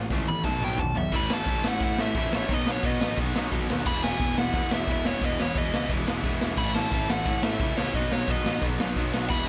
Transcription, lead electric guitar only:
0.29 B5
0.45 A5
0.64 G5
0.79 A5
0.97 E5
1.16 B5
1.33 A5
1.68 F#5
1.83 F#5
2.01 E5
2.19 E5
2.36 C#5
2.53 D#5
2.71 C#5
2.86 D#5
3.87 B5
4.03 G#5
4.38 F#5
4.74 E5
4.93 E5
5.07 C#5
5.24 D#5
5.42 C#5
5.59 D#5
6.58 B5
6.75 A5
7.10 F#5
7.43 E5
7.61 E5
7.77 C#5
7.94 D#5
8.13 C#5
8.30 D#5
9.30 B5

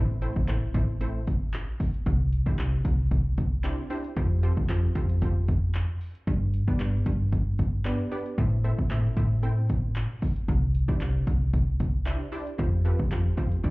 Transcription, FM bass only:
Already playing: A1
0.48 A1
0.74 A1
2.06 C2
2.59 C2
2.85 C2
4.17 F2
4.69 F2
4.95 F2
6.27 G2
6.80 G2
7.06 G2
8.38 A2
8.91 A2
9.17 A2
10.48 C2
11.01 C2
11.27 C2
12.59 F2
13.12 F2
13.38 F2
13.64 D2

